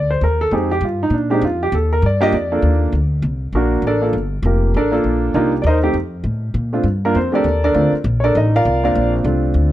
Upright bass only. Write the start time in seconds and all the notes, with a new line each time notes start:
Already playing: D2
0.21 D#2
0.51 F2
0.81 G2
1.10 A#2
1.42 F2
1.72 D#2
2.02 G2
2.32 F2
2.62 D#2
2.92 D2
3.22 C2
3.53 A#1
3.82 A1
4.13 G1
4.43 F1
4.74 A1
5.04 A#1
5.34 C2
5.64 D#2
5.93 F2
6.24 A2
6.54 A#2
6.83 G2
7.15 F2
7.44 D#2
7.74 D2
7.92 muted upright bass stroke
8.04 A#1
8.35 A1
8.65 C2
8.95 A#1
9.24 C2
9.54 D2